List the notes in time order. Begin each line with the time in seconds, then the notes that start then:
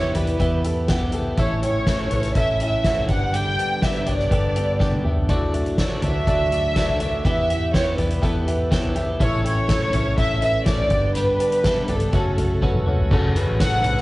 Already playing: E2 B2 E3 B3 E4 G4 C#5 E5
0.15 E2 B3 E4 G4 B4 D5, closed hi-hat, floor tom
0.27 closed hi-hat
0.39 E2 E3 B3 E4 G4 E5, kick, closed hi-hat
0.64 B3 E4 G4 A4, closed hi-hat
0.88 E3 B3 E4 G4 F#5, kick, snare, closed hi-hat
1.01 floor tom
1.12 B3 E4 G4 A4, closed hi-hat
1.37 A1 A2 E3 A3 C#4 E4 A4 C#5 E5, kick, closed hi-hat
1.62 C#4 E4 A4 C#5 G5, closed hi-hat
1.86 A2 E3 A3 C#4 E4 A4 E5, kick, snare, closed hi-hat
2.10 A1 A3 C#4 E4 A4 B4, closed hi-hat, floor tom
2.23 snare, closed hi-hat
2.35 A1 A3 C#4 E4 A4 E5, kick, closed hi-hat
2.60 C#4 E4 A4 E5 G5, closed hi-hat
2.84 A2 E3 A3 C#4 E4 A4 F#5, kick, snare, closed hi-hat
2.97 floor tom
3.08 G1 G2 D3 G3 B3 D4 G4 D5 F#5, kick, closed hi-hat
3.32 G2 D3 G3 B3 D4 G4 G5, closed hi-hat
3.58 B3 D4 G4 D5, closed hi-hat
3.81 G2 D3 G3 B3 D4 G4 B4 E5, kick, snare, closed hi-hat
4.05 G1 G3 B3 D4 G4 C#5 D5, closed hi-hat, floor tom
4.19 snare
4.30 G1 G3 B3 D4 G4 A4, kick, closed hi-hat
4.56 B3 D4 G4 D5, closed hi-hat
4.79 G2 D3 G3 B3 D4 G4 D5, kick, snare
4.92 high tom
5.04 G3 B3 D4 G4 E5, mid tom
5.17 floor tom
5.29 D2 A2 D3 F#3 A3 D4 F#4 D5, kick, closed hi-hat
5.54 A3 D4 F#4 D5, closed hi-hat
5.66 closed hi-hat
5.78 D3 F#3 A3 D4 F#4 C#5, kick, snare, closed hi-hat
6.02 D2 A3 D4 F#4 D5 E5, closed hi-hat, floor tom
6.27 D2 F#3 A3 D4 F#4 D5, kick, closed hi-hat
6.52 A3 D4 F#4 D5, closed hi-hat
6.76 D3 F#3 A3 D4 F#4 D5, kick, snare, closed hi-hat
6.88 floor tom
7.00 A3 D4 F#4 D5, closed hi-hat
7.25 E2 B2 E3 B3 E4 G4 E5, kick, closed hi-hat
7.49 B3 E4 G4 E5, closed hi-hat
7.73 E3 B3 E4 G4 C#5 E5, kick, snare, closed hi-hat
7.97 E2 B3 E4 G4 B4 D5, closed hi-hat, floor tom
8.10 closed hi-hat
8.22 E2 E3 B3 E4 G4 A4, kick, closed hi-hat
8.47 B3 E4 G4 E5, closed hi-hat
8.71 E3 B3 E4 G4 C#5, kick, snare, closed hi-hat
8.84 floor tom
8.95 B3 E4 G4 E5, closed hi-hat
9.20 A1 A2 E3 A3 C#4 E4 A4 C#5 E5, kick, closed hi-hat
9.44 C#4 E4 A4 C#5 G5, closed hi-hat
9.68 A2 E3 A3 C#4 E4 A4 E5, kick, snare, closed hi-hat
9.93 A1 A3 C#4 E4 A4 E5, closed hi-hat, floor tom
10.16 A1 A3 C#4 E4 A4 E5, kick, closed hi-hat
10.41 C#4 E4 A4 B4 E5, closed hi-hat
10.66 A2 E3 A3 C#4 E4 A4 D5 E5, kick, snare, closed hi-hat
10.78 floor tom
10.90 G1 G2 D3 G3 B3 D4 G4 D5, kick, closed hi-hat
11.15 G2 D3 G3 B3 D4 G4 B4, closed hi-hat
11.39 B3 D4 G4 D5, closed hi-hat
11.52 closed hi-hat
11.64 G2 D3 G3 B3 D4 G4 E5, kick, snare, closed hi-hat
11.88 G1 G3 B3 D4 G4 A4 D5, closed hi-hat, floor tom
12.00 closed hi-hat
12.12 F#1 C#3 F#3 A3 C#4 F#4 C#5, kick, closed hi-hat
12.38 A3 C#4 F#4 C#5, closed hi-hat, floor tom
12.61 F#2 C#3 F#3 A3 C#4 F#4 B4, kick, high tom
12.74 mid tom
12.86 F#3 A3 C#4 F#4 C#5, mid tom
12.99 floor tom
13.11 F#1 F#2 C#3 F#3 A3 C#4 F#4 A4, kick, crash
13.35 F#3 A3 C#4 F#4 B4, closed hi-hat
13.47 A1
13.60 F#2 C#3 F#3 A3 C#4 F#4 B4 F#5, kick, snare, closed hi-hat
13.84 F#3 A3 C#4 F#4 B4, closed hi-hat, floor tom
13.97 snare